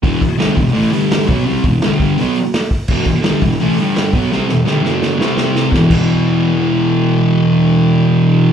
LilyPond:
<<
  \new Staff \with { instrumentName = "Distorted electric guitar" } { \clef bass \time 4/4 \key e \minor \tempo 4 = 168 <e, b, e>8 r8 <g, d g>8 <e, b,>8 <a, e a>8 <g, d g>4 <b, fis b>8 | <c g c'>8 <e, b,>8 <g, d g>4 <b, fis b>8 r4. | <e, b, e>8 r8 <g, d g>8 <e, b,>8 <a, e a>8 <g, d g>4 <b, fis b>8 | <c g c'>8 <e, b,>8 <g, d g>8 <fis, cis fis>4 <c g c'>4. |
<e, b, e>8 <e, b, e>2.~ <e, b, e>8~ | <e, b, e>1 | }
  \new DrumStaff \with { instrumentName = "Drums" } \drummode { \time 4/4 <hho bd>8 <hho bd>8 <hho sn>8 <hho bd>16 sn16 hho8 hho8 <hho sn>8 <hho bd>8 | hho8 <hho bd>8 <hho sn>8 <hho bd>8 hho8 hho8 <hho sn>8 <hho bd>8 | <cymc bd>8 <hho bd>8 <hho sn>8 <hho bd>16 sn16 hho8 hho8 <hho sn>8 <hho bd>8 | sn8 sn8 sn8 sn8 sn8 sn8 sn8 sn8 |
<bd sn>8 <cymc bd>8 r4 r4 r4 | r4 r4 r4 r4 | }
>>